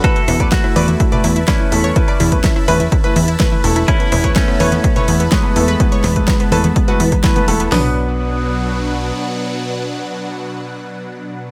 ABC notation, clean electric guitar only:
X:1
M:4/4
L:1/8
Q:1/4=125
K:Bdor
V:1 name="Clean electric guitar"
[FA]2 [A,F]4 [CE]2- | [CE]8 | [CE]2 [A,C]4 [G,B,]2- | [G,B,]8 |
B,8- | B,8 |]